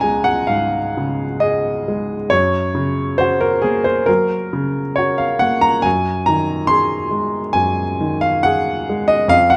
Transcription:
Already playing: C#2 C#3 G#4 F5 F#5 A#5
0.00 G#3 G#5
0.24 F#5
0.47 G#2 F5
0.97 C#3
1.40 G#4 D#5
1.88 G#3
2.30 F#2 C#5
2.75 C#3
3.18 F#4 C5
3.41 A#4
3.62 A#3 G#4
3.84 C5
4.06 F#3 A#4
4.53 C#3
4.96 F#4 C#5
5.18 F5
5.39 A#3 F#5
5.61 A#5
5.82 F#2 G#5
6.26 D#3 A#5
6.67 G#4 C6
7.11 G#3
7.53 F#2 G#5
8.01 D#3
8.21 F5
8.43 G#4 F#5
8.89 G#3
9.08 D#5
9.28 F2 F5
9.50 F#5

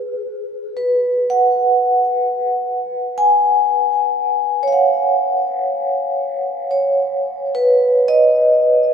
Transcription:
Already playing: G#4
0.77 B4
1.30 F#5
3.18 G#5
4.63 C#5
4.68 F5
4.72 F#5
6.71 C#5
7.55 B4
8.08 D#5

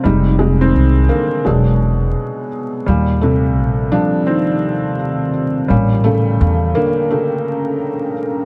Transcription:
0.04 F1 C3 G3 G#3 D#4
0.39 C3 G#3
0.61 D#3 C4
0.76 C2
1.09 D3 A#3
1.45 E1 B2 F#3 G#3 D4
2.86 D#2 A#2 D#3 G3 G4 D5 F5
3.21 C3 A3
3.58 A#1
3.92 F3 G3 D4
4.27 D#3 C4
5.68 A1 A#2 G3 A#3 C#4 A4 G5 A#5
6.04 C#3 A3
6.41 E2
6.75 D3 A#3
7.10 C#3 A3

